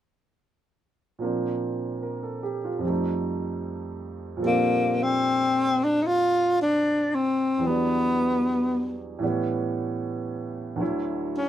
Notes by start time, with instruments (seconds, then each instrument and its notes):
1.19 grand piano A#2 F3 A#3
1.23 grand piano C4 D4
2.02 grand piano A#4
2.23 grand piano A4
2.43 grand piano G4
2.64 grand piano F4
2.78 grand piano F2 F3
2.84 grand piano G3 A3
2.89 grand piano D#4
4.37 grand piano A#2 F3 G3
4.42 tenor saxophone A#3, grand piano C4 A4
4.47 grand piano D4
5.03 tenor saxophone C4
5.84 tenor saxophone D4
6.02 tenor saxophone D#4
6.07 tenor saxophone F4
6.61 tenor saxophone D4
7.15 tenor saxophone C4
7.58 grand piano E2 E3
7.63 grand piano F#3 G3, tenor saxophone B3
7.69 grand piano D4
9.19 grand piano A2 E3 G3 B3
9.24 grand piano C#4
10.76 grand piano D2 D3 F#3 C#5
10.82 grand piano E4
11.37 tenor saxophone C#4